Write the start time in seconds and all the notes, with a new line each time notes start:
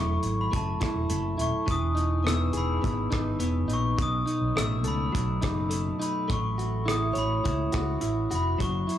Already playing: E1 F#3 A3 E4 C#5 C#6
0.23 G#1, closed hi-hat
0.41 B5
0.52 F#1 A3, kick, closed hi-hat
0.56 A5
0.80 E4, kick, cross-stick, closed hi-hat
0.95 E1
1.10 F#1 A3, closed hi-hat
1.38 D#1 E4 C#6, closed hi-hat
1.66 E1 E3, kick, closed hi-hat
1.71 D#6
1.95 D#4, closed hi-hat
2.24 B3, cross-stick, closed hi-hat
2.28 E6
2.53 E1 G#4, closed hi-hat
2.57 B5
2.82 G#1 B3, kick, closed hi-hat
3.10 G#1 D#4, kick, cross-stick, closed hi-hat
3.39 E1 B3, closed hi-hat
3.68 A#1 D#4, closed hi-hat
3.73 C#6
3.98 B1 B2, kick, closed hi-hat
4.02 D#6
4.26 D#4, closed hi-hat
4.42 B1
4.56 A1 A3 E6, cross-stick, closed hi-hat
4.84 C#2 A4 B5, closed hi-hat
5.12 B1 F#3, kick, closed hi-hat
5.42 F#1 D#4, kick, cross-stick, closed hi-hat
5.70 A3, closed hi-hat
6.00 D#4 B5, closed hi-hat
6.28 A1 A3 C#6, kick, closed hi-hat
6.58 F#4, closed hi-hat
6.86 E4, cross-stick, closed hi-hat
6.90 D#6
7.13 A1 C#5, closed hi-hat
7.18 B5
7.44 C#2 E4, kick, closed hi-hat
7.72 C#2 F#4, kick, cross-stick, closed hi-hat
8.01 A1 E4, closed hi-hat
8.31 F1 F#4, closed hi-hat
8.35 B5
8.58 F#1 F#3 C#6, kick, closed hi-hat
8.87 E4, closed hi-hat